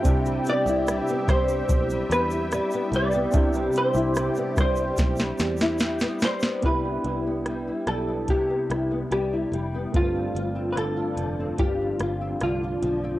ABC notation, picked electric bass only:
X:1
M:4/4
L:1/16
Q:1/4=73
K:C
V:1 name="Picked electric bass" clef=bass
C,,2 z C,,2 z C,,2 B,,,2 E,,3 z C,,2 | C,,2 z C,,2 z C,,2 B,,,2 E,,4 z2 | C,,2 C,,4 B,,,3 z C,,2 C,,2 F,,,2 | G,,,2 G,,,4 F,,,2 G,,,2 G,,,2 C,,2 B,,,2 |]